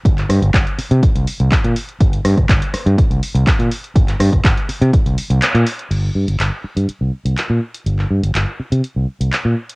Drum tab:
CC |----------------|----------------|----------------|x---------------|
HH |xxoxxxoxxxoxxxox|xxoxxxoxxxoxxxox|xxoxxxoxxxoxxxox|x--xx--xx--xx--x|
CP |-x--x-------x---|----x-------x---|-x--x-------x---|----x-------x---|
SD |--r-------------|--r---r---------|--r-------------|----------------|
BD |o---o---o---o---|o--oo---o---o---|o--oo---o-------|----------------|

CC |----------------|
HH |x--xx--xx--xx--x|
CP |-x--x-------x---|
SD |----------------|
BD |----------------|